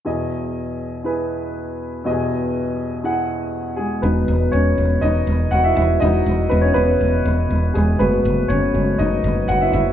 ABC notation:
X:1
M:4/4
L:1/16
Q:1/4=121
K:E
V:1 name="Upright piano"
[EGd]6 z2 [EGB]6 z2 | [E=G^Gd]6 z2 [EGf]6 [G,G]2 | [B,B]4 [Cc]4 [Dd]4 [Ff] [Ee] [Ee]2 | d4 [B,B] [Cc] [B,B]8 [G,G]2 |
[B,B]4 [Cc]4 [Dd]4 [Ff] [Ee] [Ee]2 |]
V:2 name="Upright piano" clef=bass
[E,,B,,]16 | [E,,B,,]16 | [F,G,D]2 z12 z2 | [F,G,D]2 z12 z2 |
[G,A,F]2 z4 [G,A,F]2 z8 |]
V:3 name="Fretless electric bass" clef=bass
z16 | z16 | E,,,2 E,,,2 E,,,2 E,,,2 E,,,2 E,,,2 E,,,2 E,,,2 | E,,,2 E,,,2 E,,,2 E,,,2 E,,,2 E,,,2 E,,,2 E,,,2 |
F,,,2 F,,,2 F,,,2 F,,,2 F,,,2 F,,,2 F,,,2 F,,,2 |]